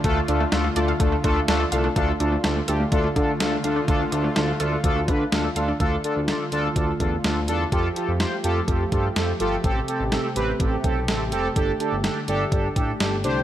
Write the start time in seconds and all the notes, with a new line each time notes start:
Already playing: D3
0.04 D2 A3 D4 F4 A4, kick, closed hi-hat
0.16 A3
0.28 D2 A3 D4 F4 A4, closed hi-hat
0.40 A3
0.52 D2 A3 D4 F4 A4, snare, closed hi-hat
0.64 F4
0.76 D2 A3 D4 F4 A4 D5, closed hi-hat
0.88 F5
1.00 D2 A3 D4 F4 A4, kick, closed hi-hat
1.12 A3
1.24 D2 A3 D4 F4 A4, kick, closed hi-hat
1.36 A3
1.48 D2 A3 D4 F4 A4, snare, closed hi-hat
1.60 F4
1.72 C2 A3 D4 F4 A4 F5, closed hi-hat
1.84 D4
1.96 D2 D3 A3 D4 F4 A4, kick, closed hi-hat
2.08 A3
2.20 D2 D4 F4 A4, closed hi-hat
2.32 A3
2.44 D2 A3 D4 F4 A4, snare, closed hi-hat
2.56 A3
2.68 D2 D4 F4 G4 A4, closed hi-hat
2.80 A3
2.92 D2 A3 D4 F4 A4, kick, closed hi-hat
3.04 A3
3.16 D3 D4 F4 A4, kick, closed hi-hat
3.40 D2 A3 D4 F4 A4, snare, closed hi-hat
3.52 A3
3.64 D2 D4 F4 A4 F5, closed hi-hat
3.76 D4
3.88 D2 A3 D4 F4 A4, kick, closed hi-hat
4.00 A3
4.12 D2 D4 F4 A4, closed hi-hat
4.24 A3
4.36 D2 A3 D4 F4 A4, snare, closed hi-hat
4.48 A3
4.60 D2 D4 F4 A4, closed hi-hat
4.72 A3
4.84 D2 A3 D4 F4 A4, kick, closed hi-hat
4.96 A3
5.08 D3 D4 F4 B4, kick, closed hi-hat
5.32 D2 A3 D4 F4 A4, snare, closed hi-hat
5.44 A3
5.56 D2 D4 F4 A4 F5, closed hi-hat
5.68 D4
5.80 D2 D3 A3 D4 F4 A4, kick, closed hi-hat
6.04 D4 F4 A4, closed hi-hat
6.16 D2
6.28 D4 F4 A4, snare, closed hi-hat
6.52 D2 D4 F4 A4, closed hi-hat
6.76 D2 D4 F4 A4, kick, closed hi-hat
7.00 E2 D4 F4 A4, kick, closed hi-hat
7.24 D2 D4 F4 A4, snare, closed hi-hat
7.48 E2 D4 F4 A4, closed hi-hat
7.72 F2 F3 F4 G4 A4, kick, closed hi-hat
7.96 F4 G4 A4, closed hi-hat
8.08 F2
8.20 F4 G4 C5, snare, closed hi-hat
8.44 F2 F4 G4 A4, closed hi-hat
8.68 F2 F4 G4 A4, kick, closed hi-hat
8.92 G2 F4 G4 A4, kick, closed hi-hat
9.16 F2 F4 G4 A4, snare, closed hi-hat
9.40 G1 F4 G4 A4, closed hi-hat
9.64 A1 C3 C4 G4 A4, kick, closed hi-hat
9.88 C4 G4 A4, closed hi-hat
10.00 A1
10.12 C4 G4 A4, snare, closed hi-hat
10.36 A1 C4 G4 B4, closed hi-hat
10.60 A1 C4 G4 A4, kick, closed hi-hat
10.84 B1 C4 G4 A4, kick, closed hi-hat
11.08 A1 C4 G4 A4, snare, closed hi-hat
11.32 F1 C4 G4 A4, closed hi-hat
11.56 G1 D3 D4 G4 A4, kick, closed hi-hat
11.80 D4 G4 A4, closed hi-hat
11.92 G1
12.04 D4 G4 A4, snare, closed hi-hat
12.28 G1 D4 G4 A4, closed hi-hat
12.52 G1 D4 G4 A4, kick, closed hi-hat
12.76 A1 D4 G4 A4, kick, closed hi-hat
13.00 G1 D4 G4 A4, snare, closed hi-hat
13.24 C2 D4 G4 C5, closed hi-hat